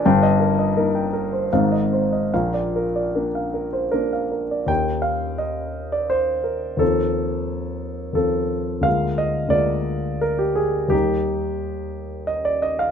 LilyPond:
\new Staff \with { instrumentName = "Grand piano" } { \time 3/4 \key ees \major \tempo 4 = 86 << { g''16 ees''16 bes'16 ees''16 bes'16 g''16 bes'16 c''16 f''16 ees''16 c''16 ees''16 | f''16 d''16 bes'16 d''16 bes'16 f''16 bes'16 c''16 r16 f''16 bes'16 d''16 | <ees, bes ees' g'>2. | <ees, f c' f'>2 <ees, f c' f'>4 |
<d, aes bes f'>4 <d, aes bes f'>2 | <ees, g bes ees'>2. | } \\ { <g,, g,>4 <bes ees'>4 <aes,, aes, c' ees'>4 | <bes,, bes,>4 <bes d'>4 <bes d' bes'>4 | g''8 f''8 ees''8. d''16 c''8 bes'8 | a'2 a'4 |
f''8 ees''8 d''4 bes'16 g'16 aes'8 | g'2 ees''16 d''16 ees''16 f''16 | } >> }